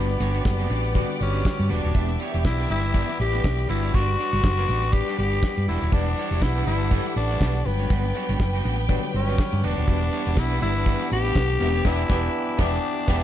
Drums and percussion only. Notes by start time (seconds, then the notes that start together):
0.10 closed hi-hat
0.20 closed hi-hat
0.34 closed hi-hat
0.45 kick, snare, tambourine
0.60 closed hi-hat
0.70 closed hi-hat
0.84 closed hi-hat
0.95 kick, closed hi-hat
1.10 closed hi-hat
1.21 closed hi-hat
1.35 closed hi-hat
1.45 kick, snare, tambourine
1.59 closed hi-hat
1.70 open hi-hat
1.84 closed hi-hat
1.95 kick, closed hi-hat
2.09 closed hi-hat
2.19 closed hi-hat
2.34 closed hi-hat
2.45 kick, snare, tambourine
2.59 closed hi-hat
2.69 closed hi-hat
2.84 closed hi-hat
2.94 kick, closed hi-hat
3.09 snare, closed hi-hat
3.20 closed hi-hat
3.34 closed hi-hat
3.44 kick, snare, tambourine
3.58 closed hi-hat
3.69 open hi-hat
3.84 closed hi-hat
3.94 kick, closed hi-hat
4.09 closed hi-hat
4.19 closed hi-hat
4.33 closed hi-hat
4.44 kick, snare, tambourine
4.58 closed hi-hat
4.68 closed hi-hat
4.83 closed hi-hat
4.93 kick, closed hi-hat
5.07 closed hi-hat
5.19 closed hi-hat
5.32 closed hi-hat
5.43 kick, snare, tambourine
5.56 closed hi-hat
5.68 open hi-hat
5.81 closed hi-hat
5.92 kick, closed hi-hat
6.06 closed hi-hat
6.17 closed hi-hat
6.31 closed hi-hat
6.42 kick, snare, tambourine
6.56 closed hi-hat
6.66 closed hi-hat
6.80 closed hi-hat
6.91 kick, closed hi-hat
7.06 closed hi-hat
7.17 closed hi-hat
7.30 closed hi-hat
7.41 kick, snare, tambourine
7.55 closed hi-hat
7.65 open hi-hat
7.79 closed hi-hat
7.90 kick, closed hi-hat
8.05 closed hi-hat
8.15 closed hi-hat
8.29 closed hi-hat
8.40 kick, snare, tambourine
8.54 closed hi-hat
8.64 closed hi-hat
8.78 closed hi-hat
8.89 kick, closed hi-hat
9.03 closed hi-hat
9.15 closed hi-hat
9.29 closed hi-hat
9.38 kick, snare, tambourine
9.52 closed hi-hat
9.63 open hi-hat
9.77 closed hi-hat
9.88 kick, closed hi-hat
10.01 closed hi-hat
10.12 closed hi-hat
10.26 closed hi-hat
10.37 kick, snare, tambourine
10.52 closed hi-hat
10.61 closed hi-hat
10.75 closed hi-hat
10.86 kick, closed hi-hat
11.01 snare, closed hi-hat
11.12 closed hi-hat
11.25 closed hi-hat
11.35 kick, snare, tambourine
11.49 closed hi-hat
11.60 open hi-hat
11.74 closed hi-hat
11.85 kick, snare, crash
12.10 kick, snare
12.59 kick, snare
13.08 kick, snare, crash